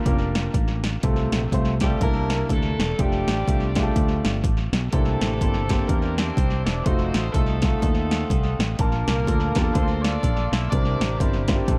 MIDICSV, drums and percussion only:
0, 0, Header, 1, 2, 480
1, 0, Start_track
1, 0, Key_signature, -1, "major"
1, 0, Tempo, 483871
1, 1029, Time_signature, 4, 2, 24, 8
1, 11691, End_track
2, 0, Start_track
2, 0, Title_t, "Drums"
2, 57, Note_on_c, 9, 36, 101
2, 60, Note_on_c, 9, 42, 75
2, 157, Note_off_c, 9, 36, 0
2, 159, Note_off_c, 9, 42, 0
2, 349, Note_on_c, 9, 38, 97
2, 349, Note_on_c, 9, 42, 62
2, 448, Note_off_c, 9, 38, 0
2, 448, Note_off_c, 9, 42, 0
2, 537, Note_on_c, 9, 36, 80
2, 540, Note_on_c, 9, 42, 79
2, 636, Note_off_c, 9, 36, 0
2, 640, Note_off_c, 9, 42, 0
2, 830, Note_on_c, 9, 38, 98
2, 832, Note_on_c, 9, 42, 60
2, 930, Note_off_c, 9, 38, 0
2, 931, Note_off_c, 9, 42, 0
2, 1022, Note_on_c, 9, 42, 75
2, 1026, Note_on_c, 9, 36, 105
2, 1122, Note_off_c, 9, 42, 0
2, 1125, Note_off_c, 9, 36, 0
2, 1313, Note_on_c, 9, 42, 61
2, 1314, Note_on_c, 9, 38, 102
2, 1412, Note_off_c, 9, 42, 0
2, 1413, Note_off_c, 9, 38, 0
2, 1511, Note_on_c, 9, 36, 77
2, 1515, Note_on_c, 9, 42, 79
2, 1610, Note_off_c, 9, 36, 0
2, 1614, Note_off_c, 9, 42, 0
2, 1788, Note_on_c, 9, 42, 66
2, 1793, Note_on_c, 9, 38, 87
2, 1800, Note_on_c, 9, 36, 86
2, 1887, Note_off_c, 9, 42, 0
2, 1892, Note_off_c, 9, 38, 0
2, 1899, Note_off_c, 9, 36, 0
2, 1994, Note_on_c, 9, 36, 101
2, 1997, Note_on_c, 9, 42, 73
2, 2093, Note_off_c, 9, 36, 0
2, 2096, Note_off_c, 9, 42, 0
2, 2281, Note_on_c, 9, 38, 100
2, 2281, Note_on_c, 9, 42, 65
2, 2380, Note_off_c, 9, 38, 0
2, 2380, Note_off_c, 9, 42, 0
2, 2475, Note_on_c, 9, 36, 84
2, 2482, Note_on_c, 9, 42, 79
2, 2574, Note_off_c, 9, 36, 0
2, 2581, Note_off_c, 9, 42, 0
2, 2774, Note_on_c, 9, 38, 98
2, 2776, Note_on_c, 9, 42, 61
2, 2874, Note_off_c, 9, 38, 0
2, 2875, Note_off_c, 9, 42, 0
2, 2965, Note_on_c, 9, 36, 103
2, 2966, Note_on_c, 9, 42, 76
2, 3065, Note_off_c, 9, 36, 0
2, 3065, Note_off_c, 9, 42, 0
2, 3251, Note_on_c, 9, 42, 63
2, 3252, Note_on_c, 9, 38, 107
2, 3350, Note_off_c, 9, 42, 0
2, 3351, Note_off_c, 9, 38, 0
2, 3448, Note_on_c, 9, 36, 79
2, 3457, Note_on_c, 9, 42, 80
2, 3547, Note_off_c, 9, 36, 0
2, 3557, Note_off_c, 9, 42, 0
2, 3724, Note_on_c, 9, 42, 63
2, 3730, Note_on_c, 9, 38, 92
2, 3735, Note_on_c, 9, 36, 86
2, 3823, Note_off_c, 9, 42, 0
2, 3829, Note_off_c, 9, 38, 0
2, 3834, Note_off_c, 9, 36, 0
2, 3927, Note_on_c, 9, 36, 93
2, 3930, Note_on_c, 9, 42, 76
2, 4026, Note_off_c, 9, 36, 0
2, 4029, Note_off_c, 9, 42, 0
2, 4213, Note_on_c, 9, 38, 101
2, 4213, Note_on_c, 9, 42, 58
2, 4312, Note_off_c, 9, 42, 0
2, 4313, Note_off_c, 9, 38, 0
2, 4402, Note_on_c, 9, 36, 81
2, 4409, Note_on_c, 9, 42, 77
2, 4501, Note_off_c, 9, 36, 0
2, 4508, Note_off_c, 9, 42, 0
2, 4693, Note_on_c, 9, 38, 100
2, 4694, Note_on_c, 9, 42, 60
2, 4792, Note_off_c, 9, 38, 0
2, 4793, Note_off_c, 9, 42, 0
2, 4886, Note_on_c, 9, 42, 78
2, 4888, Note_on_c, 9, 36, 104
2, 4985, Note_off_c, 9, 42, 0
2, 4988, Note_off_c, 9, 36, 0
2, 5172, Note_on_c, 9, 42, 61
2, 5174, Note_on_c, 9, 38, 102
2, 5272, Note_off_c, 9, 42, 0
2, 5273, Note_off_c, 9, 38, 0
2, 5368, Note_on_c, 9, 36, 78
2, 5373, Note_on_c, 9, 42, 78
2, 5467, Note_off_c, 9, 36, 0
2, 5473, Note_off_c, 9, 42, 0
2, 5648, Note_on_c, 9, 42, 61
2, 5653, Note_on_c, 9, 38, 96
2, 5654, Note_on_c, 9, 36, 84
2, 5747, Note_off_c, 9, 42, 0
2, 5753, Note_off_c, 9, 36, 0
2, 5753, Note_off_c, 9, 38, 0
2, 5843, Note_on_c, 9, 36, 89
2, 5847, Note_on_c, 9, 42, 75
2, 5943, Note_off_c, 9, 36, 0
2, 5946, Note_off_c, 9, 42, 0
2, 6131, Note_on_c, 9, 38, 101
2, 6131, Note_on_c, 9, 42, 62
2, 6230, Note_off_c, 9, 38, 0
2, 6230, Note_off_c, 9, 42, 0
2, 6319, Note_on_c, 9, 36, 84
2, 6328, Note_on_c, 9, 42, 76
2, 6418, Note_off_c, 9, 36, 0
2, 6428, Note_off_c, 9, 42, 0
2, 6612, Note_on_c, 9, 38, 92
2, 6613, Note_on_c, 9, 42, 59
2, 6711, Note_off_c, 9, 38, 0
2, 6712, Note_off_c, 9, 42, 0
2, 6804, Note_on_c, 9, 36, 110
2, 6804, Note_on_c, 9, 42, 76
2, 6903, Note_off_c, 9, 36, 0
2, 6903, Note_off_c, 9, 42, 0
2, 7085, Note_on_c, 9, 42, 61
2, 7086, Note_on_c, 9, 38, 106
2, 7184, Note_off_c, 9, 42, 0
2, 7185, Note_off_c, 9, 38, 0
2, 7282, Note_on_c, 9, 36, 81
2, 7286, Note_on_c, 9, 42, 80
2, 7381, Note_off_c, 9, 36, 0
2, 7385, Note_off_c, 9, 42, 0
2, 7557, Note_on_c, 9, 42, 61
2, 7563, Note_on_c, 9, 38, 97
2, 7569, Note_on_c, 9, 36, 84
2, 7656, Note_off_c, 9, 42, 0
2, 7662, Note_off_c, 9, 38, 0
2, 7668, Note_off_c, 9, 36, 0
2, 7760, Note_on_c, 9, 36, 101
2, 7766, Note_on_c, 9, 42, 75
2, 7859, Note_off_c, 9, 36, 0
2, 7866, Note_off_c, 9, 42, 0
2, 8048, Note_on_c, 9, 38, 98
2, 8048, Note_on_c, 9, 42, 60
2, 8147, Note_off_c, 9, 42, 0
2, 8148, Note_off_c, 9, 38, 0
2, 8235, Note_on_c, 9, 36, 80
2, 8244, Note_on_c, 9, 42, 80
2, 8334, Note_off_c, 9, 36, 0
2, 8343, Note_off_c, 9, 42, 0
2, 8530, Note_on_c, 9, 38, 101
2, 8532, Note_on_c, 9, 42, 59
2, 8630, Note_off_c, 9, 38, 0
2, 8631, Note_off_c, 9, 42, 0
2, 8718, Note_on_c, 9, 42, 81
2, 8720, Note_on_c, 9, 36, 112
2, 8817, Note_off_c, 9, 42, 0
2, 8819, Note_off_c, 9, 36, 0
2, 9004, Note_on_c, 9, 42, 60
2, 9005, Note_on_c, 9, 38, 104
2, 9103, Note_off_c, 9, 42, 0
2, 9104, Note_off_c, 9, 38, 0
2, 9200, Note_on_c, 9, 36, 81
2, 9209, Note_on_c, 9, 42, 80
2, 9299, Note_off_c, 9, 36, 0
2, 9308, Note_off_c, 9, 42, 0
2, 9474, Note_on_c, 9, 42, 64
2, 9479, Note_on_c, 9, 38, 91
2, 9484, Note_on_c, 9, 36, 81
2, 9573, Note_off_c, 9, 42, 0
2, 9579, Note_off_c, 9, 38, 0
2, 9584, Note_off_c, 9, 36, 0
2, 9673, Note_on_c, 9, 36, 97
2, 9675, Note_on_c, 9, 42, 77
2, 9773, Note_off_c, 9, 36, 0
2, 9774, Note_off_c, 9, 42, 0
2, 9964, Note_on_c, 9, 42, 62
2, 9965, Note_on_c, 9, 38, 104
2, 10063, Note_off_c, 9, 42, 0
2, 10064, Note_off_c, 9, 38, 0
2, 10150, Note_on_c, 9, 36, 83
2, 10158, Note_on_c, 9, 42, 80
2, 10249, Note_off_c, 9, 36, 0
2, 10257, Note_off_c, 9, 42, 0
2, 10444, Note_on_c, 9, 38, 95
2, 10446, Note_on_c, 9, 42, 58
2, 10544, Note_off_c, 9, 38, 0
2, 10545, Note_off_c, 9, 42, 0
2, 10635, Note_on_c, 9, 36, 107
2, 10640, Note_on_c, 9, 42, 81
2, 10735, Note_off_c, 9, 36, 0
2, 10739, Note_off_c, 9, 42, 0
2, 10923, Note_on_c, 9, 42, 66
2, 10924, Note_on_c, 9, 38, 101
2, 11023, Note_off_c, 9, 42, 0
2, 11024, Note_off_c, 9, 38, 0
2, 11113, Note_on_c, 9, 36, 81
2, 11119, Note_on_c, 9, 42, 82
2, 11212, Note_off_c, 9, 36, 0
2, 11219, Note_off_c, 9, 42, 0
2, 11386, Note_on_c, 9, 42, 63
2, 11391, Note_on_c, 9, 38, 91
2, 11396, Note_on_c, 9, 36, 83
2, 11485, Note_off_c, 9, 42, 0
2, 11490, Note_off_c, 9, 38, 0
2, 11496, Note_off_c, 9, 36, 0
2, 11586, Note_on_c, 9, 36, 96
2, 11588, Note_on_c, 9, 42, 74
2, 11685, Note_off_c, 9, 36, 0
2, 11688, Note_off_c, 9, 42, 0
2, 11691, End_track
0, 0, End_of_file